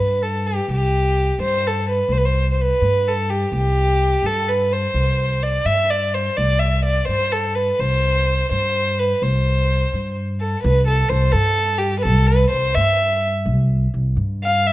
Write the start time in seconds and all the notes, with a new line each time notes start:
Already playing: G2 B4
0.22 A4
0.47 G4
0.68 C2
0.72 G4
1.38 G2 C5
1.67 A4
1.89 B4
2.08 C2 C5
2.17 B4
2.25 C5
2.51 C5
2.61 B4
2.82 G2
3.08 A4
3.30 G4
3.52 C2 G4
4.23 G2 A4
4.48 B4
4.73 C5
4.94 C2
5.43 D5
5.65 G2 E5
5.90 D5
6.14 C5
6.37 C2 D5
6.59 E5
6.85 D5
7.08 G2 C5
7.32 A4
7.55 B4
7.79 C2 C5
8.51 G2 C5
8.99 B4
9.22 C2 C5
9.93 G2
10.40 A4
10.63 C2 B4
10.87 A4
11.09 C2 C5
11.32 G2 A4
11.78 G4
11.99 A4 B4
12.05 C2
12.26 B4
12.50 C2 C5
12.75 G2 E5
13.45 C2
13.94 C2
14.17 G2
14.44 F5
14.67 E5